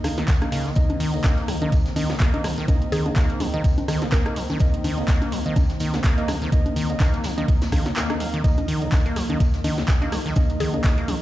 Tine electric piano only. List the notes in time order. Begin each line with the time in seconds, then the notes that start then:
0.04 A#3 D#4 F5
0.42 A#3 D#4 F5
0.52 A#3 D#4 F5
0.76 A#3 D#4 D#5
1.14 A#3 D#4 D#5
1.62 A#3 D#4 D#5
1.96 A#3 D#4 D#5
2.34 A#3 D#4 D#5
2.68 A#3 D#4 D#5
3.06 A#3 D#4 D#5
3.54 A#3 D#4 D#5
3.88 A#3 D#4 D#5
4.26 A#3 D#4 D#5
4.60 A#3 D#4 D#5
4.98 A#3 D#4 D#5
5.46 A#3 D#4 D#5
5.80 A#3 D#4 D#5
6.18 A#3 D#4 D#5
6.52 A#3 D#4 D#5
6.90 A#3 D#4 D#5
7.38 A#3 D#4 D#5
7.72 A#3 D#4 F5
8.10 A#3 D#4 F5
8.20 A#3 D#4 F5
8.44 A#3 D#4 D#5
8.82 A#3 D#4 D#5
9.30 A#3 D#4 D#5
9.64 A#3 D#4 D#5
10.02 A#3 D#4 D#5
10.36 A#3 D#4 D#5
10.74 A#3 D#4 D#5